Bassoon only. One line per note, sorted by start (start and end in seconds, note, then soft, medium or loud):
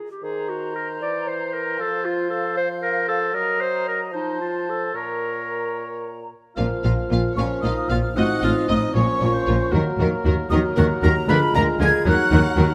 0.23 1.03 D#3 soft
1.01 1.79 E3 soft
1.80 3.31 F3 medium
3.34 4.14 F#3 medium
4.12 4.93 F3 medium
4.94 6.27 A#2 soft
6.58 7.33 F3 medium
7.37 8.14 F3 medium
8.16 8.93 F3 medium
8.95 9.74 F3 medium
9.73 10.51 F#3 medium
10.51 11.30 F#3 medium
11.28 12.07 G#3 medium
12.06 12.74 F#3 medium